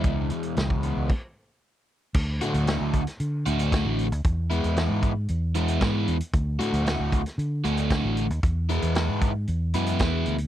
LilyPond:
<<
  \new Staff \with { instrumentName = "Overdriven electric guitar" } { \clef bass \time 4/4 \key d \lydian \tempo 4 = 114 <e, e gis e'>8 e8 gis8 b8 r2 | r8 <a, d a fis'>8 <a, d a fis'>8 r4 <a, d a fis'>8 <a, d a fis'>8 r8 | r8 <e gis b e'>8 <e gis b e'>8 r4 <e gis b e'>8 <e gis b e'>8 r8 | r8 <a, d a fis'>8 <a, d a fis'>8 r4 <a, d a fis'>8 <a, d a fis'>8 r8 |
r8 <e gis b e'>8 <e gis b e'>8 r4 <e gis b e'>8 <e gis b e'>8 r8 | }
  \new Staff \with { instrumentName = "Fingered electric bass" } { \clef bass \time 4/4 \key d \lydian cis,8 r8 cis,8. cis,16 r2 | d,8 r16 d,8 d,8 r16 d8 d,8. a,,8 d,16 | e,8. e,8 gis,8. e,4 gis,8 e,16 r16 | d,8 r16 d,8 d,8 r16 d8 d,8. a,,8 ees,16 |
e,8. e,8 gis,8. e,8 fis,8 e,8 d,8 | }
  \new DrumStaff \with { instrumentName = "Drums" } \drummode { \time 4/4 <hh bd>8 hh16 hh16 <hh sn>16 bd16 hh8 <cymc bd>4 r4 | <cymc bd>8 hh16 hh16 <hh sn>8 <hh bd>16 <hh sn>16 hh8 hh16 hh16 <hh bd sn>8 hh16 hh16 | <hh bd>8 hh16 hh16 <hh sn>8 <hh bd>8 hh8 hh16 hh16 <hh bd sn>8 hh16 hh16 | <hh bd>8 hh16 hh16 <hh sn>8 <hh bd>16 <hh sn>16 hh8 hh16 hh16 <hh bd sn>8 hh16 hh16 |
<hh bd>8 hh16 hh16 <hh sn>8 <hh bd>8 hh8 hh16 hh16 <hh bd sn>8 hh16 hh16 | }
>>